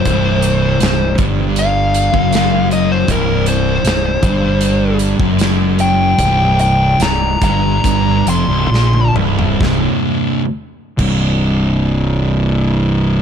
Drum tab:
CC |----------------|----------------|----------------|------x---------|
HH |x-x-x-x-x-x-x-x-|x-x-x-x-x-x-x-x-|x-x-x-x-x-x-----|----------------|
SD |----o-------o---|----o-------o---|----o-------o---|o---------------|
T1 |----------------|----------------|-------------o--|----------------|
T2 |----------------|----------------|--------------o-|----------------|
FT |----------------|----------------|---------------o|----------------|
BD |o-----o----o----|o-----o----o----|o-----o-o-------|o-----o---------|